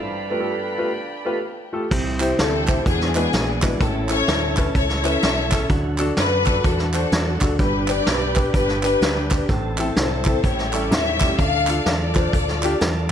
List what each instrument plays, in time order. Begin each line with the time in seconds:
Already playing: tonewheel organ D4 F4 B4, string section A5
0.01 grand piano G2, string section G5 B5
0.30 tonewheel organ A3 B3 F4, grand piano A3 F4 G4 B4
0.39 grand piano A3 F4 G4 A4
0.78 grand piano A3 F4 G4 B4
1.25 tonewheel organ A3 B3 F4, grand piano A3 F4 G4 B4
1.73 grand piano A3 F4 G4 A4
1.91 fingered electric bass C2, grand piano C3, tonewheel organ E3 G3 C4 G4, kick, crash
2.20 grand piano E4 G4 C5, clap, closed hi-hat
2.39 fingered electric bass D2, string section C4 E4 A4, snare, closed hi-hat
2.68 grand piano E4 G4 C5, kick, clap, closed hi-hat
2.86 fingered electric bass E2, tonewheel organ E3 G#3 D4 F#4, grand piano E3, string section B3 D4 G#4, kick, closed hi-hat
3.01 snare
3.15 grand piano G#3 D4 E4 F#4 B4, string section B3 D4 G#4, clap, closed hi-hat
3.33 fingered electric bass A#1, snare, closed hi-hat
3.62 grand piano G#3 D4 E4 F#4 B4, kick, snare, clap, closed hi-hat
3.79 fingered electric bass A1, grand piano A2, tonewheel organ A3 C#4 A4, string section C#4 E4 A4, kick, closed hi-hat
4.09 grand piano C#4 E4 A4, string section E4 A4 C#5, clap, closed hi-hat
4.28 fingered electric bass D2, snare, closed hi-hat
4.57 grand piano C#4 E4 B4, kick, clap, closed hi-hat
4.75 fingered electric bass C#2, string section E4 A4 C#5, kick, closed hi-hat
4.89 snare
5.04 grand piano C#4 E4 B4, string section A4 C#5 E5, clap, closed hi-hat
5.22 fingered electric bass B1, snare, closed hi-hat
5.51 grand piano C#4 E4 A4, kick, snare, clap, closed hi-hat
5.70 fingered electric bass D2, tonewheel organ D3 F#3 F#4, grand piano D3, kick, closed hi-hat
5.98 grand piano D4 F#4 A4, clap, closed hi-hat
6.17 fingered electric bass F#2, string section D4 F#4 B4, snare, closed hi-hat
6.46 grand piano D4 F#4 A4, kick, clap, closed hi-hat
6.64 fingered electric bass E2, string section D4 F#4 A4, kick, closed hi-hat
6.79 snare
6.93 string section D4 F#4 A4, grand piano D4 F#4 C5, clap, closed hi-hat
7.12 fingered electric bass E2, snare, closed hi-hat
7.41 fingered electric bass D2, grand piano D4 F#4 A4, kick, snare, clap, closed hi-hat
7.59 fingered electric bass G1, grand piano G2, tonewheel organ G3 B3 G4, string section D4 G4 B4, kick, closed hi-hat
7.88 grand piano D4 G4 B4, string section G4 B4 D5, clap, closed hi-hat
8.07 fingered electric bass B1, snare, closed hi-hat
8.36 grand piano D4 G4 B4, kick, clap, closed hi-hat
8.54 fingered electric bass G1, string section D4 G4 B4, kick, closed hi-hat
8.69 snare
8.83 grand piano D4 G4 B4, string section D4 G4 B4, clap, closed hi-hat
9.01 fingered electric bass D2, snare, closed hi-hat
9.31 grand piano D4 G4 B4, kick, snare, clap, closed hi-hat
9.49 fingered electric bass A1, grand piano A2, tonewheel organ E3 A3 C4 A4, kick, closed hi-hat
9.78 grand piano C4 E4 A4, clap, closed hi-hat
9.96 fingered electric bass C2, string section E4 A4 C5, snare, closed hi-hat
10.25 grand piano C4 E4 A4, kick, clap, closed hi-hat
10.43 fingered electric bass A1, grand piano A2, tonewheel organ C#4 E4 G4, string section E4 G4 C#5, kick, closed hi-hat
10.58 snare
10.73 grand piano G3 A3 C#4 E4 A4, string section D5, clap, closed hi-hat
10.91 fingered electric bass D#2, string section G4 C#5 E5, snare, closed hi-hat
11.20 grand piano G3 A3 C#4 E4 G4, kick, snare, clap, closed hi-hat
11.39 fingered electric bass D2, grand piano D3, tonewheel organ D4 F4 A4, string section A4 D5 F5, kick, closed hi-hat
11.67 grand piano D4 F4 A4, clap, closed hi-hat
11.86 fingered electric bass E2, string section F4 A4 D5, snare, closed hi-hat
12.15 grand piano D4 F4 C5, kick, clap, closed hi-hat
12.33 fingered electric bass D2, kick, closed hi-hat
12.48 snare
12.63 grand piano D4 F4 G4, clap, closed hi-hat
12.81 fingered electric bass E2, snare, closed hi-hat